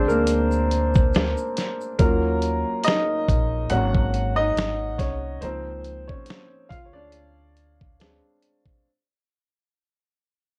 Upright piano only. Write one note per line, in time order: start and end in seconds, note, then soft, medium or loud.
0.00 1.09 G#3 medium
0.00 2.02 C4 medium
0.00 1.10 D4 medium
0.00 2.02 C5 medium
0.08 1.53 A#3 medium
0.08 1.52 A#4 medium
1.99 3.67 F#3 medium
1.99 2.82 A#3 medium
1.99 3.67 C#4 soft
1.99 3.67 F4 medium
1.99 2.87 A#4 medium
2.84 3.67 D#4 medium
2.84 3.73 D#5 loud
3.70 4.95 F#3 medium
3.70 4.96 A#3 soft
3.70 4.96 C#4 medium
3.70 4.34 F#4 medium
3.70 4.39 F#5 loud
4.36 4.96 D#4 medium
4.36 5.01 D#5 loud
4.98 5.40 C#4 medium
4.98 5.43 C#5 medium
5.41 6.66 F3 medium
5.41 6.67 A#3 soft
5.41 6.05 C4 medium
5.41 6.67 D#4 medium
5.41 6.10 C5 medium
6.08 6.67 C#4 medium
6.08 6.72 C#5 medium
6.69 6.86 F4 medium
6.69 6.86 F5 medium
6.85 6.94 C#5 medium
6.93 7.99 D4 medium
6.93 8.38 D5 medium
7.99 8.81 G#3 soft
7.99 8.81 C4 soft
7.99 8.82 D4 medium